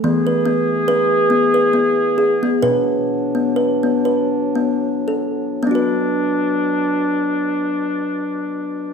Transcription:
0.04 E3 B3 G#4
0.27 B4
0.45 B3
0.88 B4
1.30 B3
1.54 B4
1.73 B3
2.18 G#4
2.43 B3
2.62 B2 F#3 D4 B4
3.35 B3
3.56 B4
3.83 B3
4.05 B4
4.55 B3
5.08 A4
5.63 B2 F#3 B3 D4
5.67 D4
5.71 F#4
5.75 B4

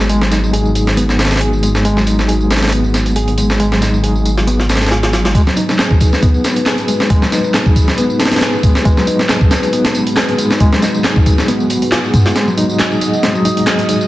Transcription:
Already playing: G#1 F#3 G#3 B3 D#4 F#4 G#4
0.09 G#3, closed hi-hat, tambourine
0.21 snare, tambourine
0.31 D#4, snare, closed hi-hat, tambourine
0.43 tambourine
0.53 G#4, closed hi-hat, tambourine
0.65 tambourine
0.75 closed hi-hat, tambourine
0.87 snare, tambourine
0.97 B3, closed hi-hat, tambourine
1.09 snare, tambourine
1.19 snare, closed hi-hat, tambourine
1.25 snare, closed hi-hat
1.31 snare, closed hi-hat, tambourine
1.36 snare, closed hi-hat
1.41 G#4, closed hi-hat, tambourine
1.53 tambourine
1.63 G#3, closed hi-hat, tambourine
1.75 snare, tambourine
1.85 G#3, closed hi-hat, tambourine
1.97 F#3, snare, tambourine
2.06 D#4, closed hi-hat, tambourine
2.19 snare, tambourine
2.28 G#4, closed hi-hat, tambourine
2.40 tambourine
2.50 snare, closed hi-hat, tambourine
2.56 snare, closed hi-hat
2.62 snare, closed hi-hat, tambourine
2.67 snare, closed hi-hat
2.72 B3, closed hi-hat, tambourine
2.84 tambourine
2.94 snare, closed hi-hat, tambourine
3.06 closed hi-hat, tambourine
3.16 G#4, closed hi-hat, tambourine
3.28 closed hi-hat, tambourine
3.38 G#3, closed hi-hat, tambourine
3.50 snare, tambourine
3.60 G#3, closed hi-hat, tambourine
3.72 F#3, snare, tambourine
3.82 D#4, snare, closed hi-hat, tambourine
3.94 tambourine
4.03 G#4, closed hi-hat, tambourine
4.15 tambourine
4.25 closed hi-hat, tambourine
4.37 snare, tambourine
4.47 B3, closed hi-hat, tambourine
4.59 snare, tambourine
4.69 snare, closed hi-hat, tambourine
4.76 snare, closed hi-hat
4.81 snare, closed hi-hat, tambourine
4.87 snare, closed hi-hat
4.91 G#4, snare, closed hi-hat, tambourine
5.03 snare, closed hi-hat, tambourine
5.13 F#3, snare, closed hi-hat, tambourine
5.25 G#3, snare, closed hi-hat
5.35 G#3 D#4 F#4 B4, kick, closed hi-hat, tambourine
5.47 F#3, snare, tambourine
5.57 D#4, closed hi-hat, tambourine
5.69 snare, tambourine
5.79 G#4, snare, clap, closed hi-hat, tambourine
5.90 kick, tambourine
6.00 kick, closed hi-hat, tambourine
6.12 snare, tambourine
6.22 B3, kick, closed hi-hat, tambourine
6.34 tambourine
6.44 snare, closed hi-hat, tambourine
6.56 closed hi-hat, tambourine
6.66 G#4, snare, clap, closed hi-hat, tambourine
6.78 closed hi-hat, tambourine
6.88 G#3, closed hi-hat, tambourine
7.00 snare, tambourine
7.10 G#3, kick, closed hi-hat, tambourine
7.22 F#3, snare, tambourine
7.32 D#4, snare, closed hi-hat, tambourine
7.44 tambourine
7.54 G#4, snare, clap, closed hi-hat, tambourine
7.66 kick, tambourine
7.76 kick, closed hi-hat, tambourine
7.88 snare, tambourine
7.98 B3, closed hi-hat, tambourine
8.10 tambourine
8.20 snare, closed hi-hat, tambourine
8.25 snare, closed hi-hat
8.32 snare, closed hi-hat, tambourine
8.36 snare, closed hi-hat
8.41 G#4, snare, clap, closed hi-hat, tambourine
8.53 tambourine
8.63 G#3, kick, closed hi-hat, tambourine
8.75 snare, tambourine
8.85 G#3, kick, closed hi-hat, tambourine
8.97 F#3, snare, tambourine
9.07 D#4, closed hi-hat, tambourine
9.19 snare, tambourine
9.29 G#4, snare, clap, closed hi-hat, tambourine
9.41 kick, tambourine
9.51 snare, closed hi-hat, tambourine
9.63 closed hi-hat, tambourine
9.73 B3, closed hi-hat, tambourine
9.85 snare, closed hi-hat, tambourine
9.95 closed hi-hat, tambourine
10.07 closed hi-hat, tambourine
10.17 G#4, snare, clap, closed hi-hat, tambourine
10.29 closed hi-hat, tambourine
10.38 G#3, closed hi-hat, tambourine
10.50 snare, tambourine
10.60 G#3, kick, closed hi-hat, tambourine
10.72 F#3, snare, tambourine
10.82 D#4, snare, closed hi-hat, tambourine
10.94 tambourine
11.04 G#4, snare, clap, closed hi-hat, tambourine
11.16 kick, tambourine
11.26 kick, closed hi-hat, tambourine
11.38 snare, tambourine
11.48 B3, closed hi-hat, tambourine
11.60 tambourine
11.70 closed hi-hat, tambourine
11.82 closed hi-hat, tambourine
11.92 G#4, snare, clap, closed hi-hat, tambourine
12.04 tambourine
12.13 G#3, kick, closed hi-hat, tambourine
12.26 snare, tambourine
12.35 G#3 D#5, snare, closed hi-hat, tambourine
12.47 F#3, tambourine
12.57 D#4, closed hi-hat, tambourine
12.69 tambourine
12.79 G#4, snare, clap, closed hi-hat, tambourine
12.91 tambourine
13.01 closed hi-hat, tambourine
13.13 tambourine
13.23 G#3, snare, closed hi-hat, tambourine
13.35 F#3, tambourine
13.45 D#4, closed hi-hat, tambourine
13.57 closed hi-hat, tambourine
13.67 G#4, snare, clap, closed hi-hat, tambourine
13.79 closed hi-hat, tambourine
13.89 closed hi-hat, tambourine
14.01 tambourine

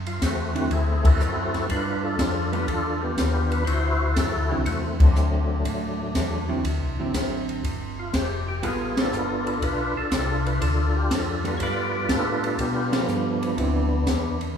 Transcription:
Already playing: F#2
0.06 F4, ride
0.21 E2 A3 C4 F#4, kick, snare, hi-hat pedal, ride
0.55 D3 F#3 C4 E4, ride
0.71 D2 C4 E4 G#4, kick, ride
1.05 C4 F#4 A4, kick, ride
1.19 F#2, hi-hat pedal
1.54 snare, ride
1.69 G2 D4 F4 B4, kick, ride
2.03 D4 F4 A4
2.19 F2, kick, snare, hi-hat pedal, ride
2.52 G3 B3 F4 A4 B4, ride
2.68 E2 D4 F4 A4, kick, ride
3.02 B3 D4 G4
3.17 D#2, kick, snare, hi-hat pedal, ride
3.50 B4, ride
3.65 D2 E4 F#4 C5, kick, ride
4.14 F#2 A4, kick, snare, hi-hat pedal, ride
4.33 D2
4.49 C2 D3 F#3 C4 E4 G#4
4.66 E2 A3 C4 F#4, kick, ride
5.00 F#3 A3 D4, kick, ride
5.15 D2, hi-hat pedal
5.65 A2, kick, ride
6.15 E2, kick, snare, hi-hat pedal, ride
6.48 D3 F#3 C4 E4
6.64 D2, kick, ride
6.80 C2
6.96 A1 D3 F#3
7.00 C4 E4
7.14 A1, kick, snare, hi-hat pedal, ride
7.49 ride
7.64 G1, kick, ride
7.99 F4
8.13 F1 G4, kick, snare, hi-hat pedal, ride
8.48 G4
8.63 A1 G3 B3 F4 G#4 A4, kick, ride
8.97 D4 F4 A4, snare, ride
9.12 G1, hi-hat pedal
9.47 ride
9.62 B1 D4 F4 B4, kick, ride
9.96 B1 D4 F4 A4
10.11 C2, kick, snare, hi-hat pedal, ride
10.46 B4, ride
10.61 D2 D4 F4 A4, kick, ride
10.96 G4
11.10 F2 A4, kick, snare, hi-hat pedal, ride
11.44 G3 B3 F4 A4 B4, ride
11.57 G2 C#5, kick, ride
11.63 F4 B4 D5
12.08 A2 G3 B3 D4 F4 A4, kick, snare, hi-hat pedal, ride
12.44 ride
12.59 B2 B3 D4 G4, kick, ride
12.92 F3 G3 B3 D4 F4 A4, snare, ride
13.07 G2, hi-hat pedal
13.43 ride
13.57 D2 D3 F#3 C4 E4, kick, ride
14.07 E2, kick, snare, hi-hat pedal, ride
14.41 ride

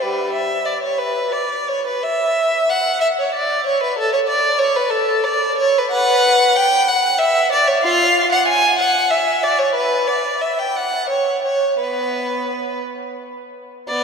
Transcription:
0.02 G3 B4
0.33 E5
0.65 D5
0.82 C#5
0.98 B4
1.32 D5
1.68 C#5
1.87 B4
2.03 E5
2.69 F#5
3.00 E5
3.19 C#5
3.34 D5
3.66 C#5
3.83 B4
3.99 A4
4.13 C#5
4.28 D5
4.59 C#5
4.76 B4
4.91 A4
5.24 D5
5.58 C#5
5.78 B4
5.91 B4 F#5
6.56 G5
6.88 F#5
7.18 E5
7.52 D5
7.67 C#5
7.83 F4 F5
8.32 F#5
8.48 G#5
8.79 F#5
9.10 E5
9.43 D5
9.59 C#5
9.74 B4
10.07 D5
10.41 E5
10.59 G5
10.76 F#5
11.10 C#5
11.45 C#5
11.79 B3 B4
13.88 B3 D5

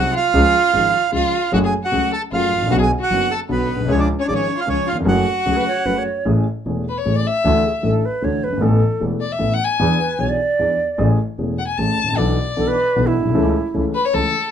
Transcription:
Already playing: C2 C3 F#3 C4 D#4 F#4 G#4 F#5
0.14 F4 F5
0.34 C#2 C#3 F3 G#3 C#4 G#4
0.73 G#1 G#2 F3 G#3 C#4 G#4
1.12 C#2 C#3 F3 G#3 C#4 F4 G#4 F5
1.52 F#1 F#2 F#3 A3 C#4 F#4 G#4 F#5
1.64 G#4 G#5
1.84 F#4 F#5
1.92 C#2 C#3 F#3 A3 C#4 G#4
2.12 A4 A5
2.32 F#1 F#2 F#3 A3 C#4 F4 G#4 F5
2.53 A1
2.57 G#1
2.62 A1
2.67 A#1 B1 B2 D3 B3 C#4 F#4
2.72 B1 F#4 F#5
2.78 G#4
2.83 G#5
3.00 F#4 F#5
3.11 F#1 F#2 D3 B3 C#4 F#4
3.31 A4 A5
3.49 B1 B2 D3 B3 C#4 F#4 B4
3.70 B1
3.76 A#1
3.80 B1
3.85 C2 C#2 C#3 F3 G#3 C#4 G#4
3.89 C#2 C#5
3.98 D4 D5
4.19 C#4 C#5
4.25 G#1 G#2 F3 G#3 C#4 D4 G#4 D5
4.29 G#1 C#4
4.35 C#5
4.57 F4 F5
4.67 C#2 C#3 F3 G#3 C#4 G#4 C#5
4.87 F4 F5
4.92 D#2 E2
5.00 F2
5.05 F#1 F#2 F#3 A3 C#4 F#4 G#4 F#5
5.46 C#2 C#3 F#3 A3 C#4 G#4
5.57 B4
5.68 C#5
5.85 F#1 F#2 F#3 A3 C#4 G#4 B4
5.98 C#5
6.25 A1 A2 E3 A3 C#4 G#4
6.66 E1 E2 E3 A3 C#4 G#4
6.89 B4
6.98 C#5
7.05 A1 A2 E3 A3 C#4 G#4
7.15 D5
7.27 E5
7.44 D2 D3 E3 A3 D4 A4
7.65 G#4
7.83 A1 A2 E3 A3 D4 A4
8.05 B4
8.22 D2 D3 E3 A3 D4 A4 C#5
8.44 F#1 G1 B4
8.53 G1
8.57 G#1 A2 E3 A3 B3
8.61 A1 A4
9.00 E1 E2 E3 A3 B3 A4
9.21 D5
9.32 E5
9.39 A1 A2 E3 A3 B3 A4
9.54 F#5
9.64 G#5
9.79 E2 E3 B3 D4 G#4
9.99 B4
10.18 B1 B2 E3 B3 D4 G#4 C#5
10.29 D5
10.59 E2 E3 B3 D4 G#4
10.98 A1 A2 E3 A3 C#4 G#4
11.38 E1 E2 E3 A3 C#4 G#4
11.58 F#5
11.67 G#5
11.78 A1 A2 E3 A3 C#4 G#4 A5
11.98 A1
12.03 G#1 A1
12.12 A#1
12.17 B1 B2 E3 B3 D4 A4 D5
12.57 B1 B2 E3 B3 D4 A4
12.68 B4
12.96 B1 B2 E3 B3 D4 A4
13.07 E4
13.17 A#1 B1
13.25 B1
13.29 C2
13.35 C#2 C#3 E3 A3 C#4 A4
13.74 C#2 C#3 E3 A3 C#4 A4
13.94 B4
14.05 C#5
14.14 C#2 C#3 E3 A3 C#4 A4

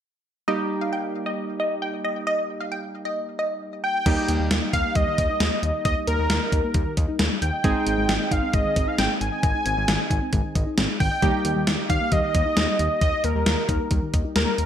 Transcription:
0.48 G3 A#3 D#4 G4 D#5
0.81 F5
0.93 G5
1.26 D#5
1.60 D#5
1.82 G5
2.05 D#5
2.27 D#5
2.60 F5
2.72 G5
3.05 D#5
3.39 D#5
3.84 G5
4.06 D#2 G3 A#3 D#4 G4 D#5, kick, closed hi-hat, crash
4.17 D#4
4.28 D#2 A#3, closed hi-hat
4.40 D#2 G3
4.51 D#2 D#3, snare, closed hi-hat
4.62 D#5
4.73 D#2 D#4 F5, kick, closed hi-hat
4.84 A#3
4.95 D#2 G3 D#5, kick, closed hi-hat
5.07 D#3
5.18 D#2 D#5, kick, closed hi-hat
5.29 D#4
5.40 D#2 A#3, snare, closed hi-hat
5.52 G3
5.63 D#2 D#3, closed hi-hat
5.74 D#5
5.85 D#2 D#5, kick, closed hi-hat
5.96 D#4
6.07 D#2 A#3 A#4, closed hi-hat
6.19 D#2 G3
6.30 D#2 D#3, snare, closed hi-hat
6.41 D#5
6.52 D#2 D#4, kick, closed hi-hat
6.63 A#3
6.74 D#2 G3, kick, closed hi-hat
6.86 D#3
6.97 D#2 D#5, kick, closed hi-hat
7.08 D#4
7.19 D#2 A#3, snare, closed hi-hat
7.31 G3
7.42 D#2 D#3 G5, closed hi-hat
7.53 D#5
7.64 G#1 G#3 C4 D#4 G#4 D#5, kick, closed hi-hat
7.75 D#4
7.87 G#1 C4, closed hi-hat
7.98 G#1 G#3
8.09 G#1 D#3, snare, closed hi-hat
8.20 D#5
8.31 G#1 D#4 F5, kick, closed hi-hat
8.43 C4
8.53 G#1 G#3 D#5, kick, closed hi-hat
8.65 D#3
8.76 G#1 D#5, kick, closed hi-hat
8.87 D#4 F5
8.98 G#1 C4 G5, snare, closed hi-hat
9.10 G#3
9.21 G#1 D#3 G#5, closed hi-hat
9.32 D#5
9.43 G#1 D#5, kick, closed hi-hat
9.54 D#4
9.66 G#1 C4, closed hi-hat
9.77 G#1 G#3
9.88 G#1 D#3, snare, closed hi-hat
9.99 D#5
10.10 G#1 D#4, kick, closed hi-hat
10.22 C4
10.33 G#1 G#3, kick, closed hi-hat
10.44 D#3
10.55 G#1 D#5, kick, closed hi-hat
10.66 D#4
10.78 G#1 C4, snare, closed hi-hat
10.89 G#3
11.00 G#1 D#3 G5, kick, open hi-hat
11.11 D#5
11.22 D#2 G3 A#3 D#4 G4 D#5, kick, closed hi-hat
11.34 D#4
11.45 D#2 A#3, closed hi-hat
11.56 D#2 G3
11.67 D#2 D#3, snare, closed hi-hat
11.78 D#5
11.90 D#2 D#4 F5, kick, closed hi-hat
12.01 A#3
12.12 D#2 G3 D#5, kick, closed hi-hat
12.23 D#3
12.34 D#2 D#5, kick, closed hi-hat
12.46 D#4
12.57 D#2 A#3, snare, closed hi-hat
12.68 G3
12.79 D#2 D#3, closed hi-hat
12.90 D#5
13.01 D#2 D#5, kick, closed hi-hat
13.13 D#4
13.24 D#2 A#3 A#4, closed hi-hat
13.35 D#2 G3
13.46 D#2 D#3, snare, closed hi-hat
13.58 D#5
13.69 D#2 D#4, kick, closed hi-hat
13.80 A#3
13.91 D#2 G3, kick, closed hi-hat
14.02 D#3
14.13 D#2 D#5, kick, closed hi-hat
14.25 D#4
14.36 D#2 A#3 A#4, snare, closed hi-hat
14.47 G3
14.58 D#2 D#3, closed hi-hat

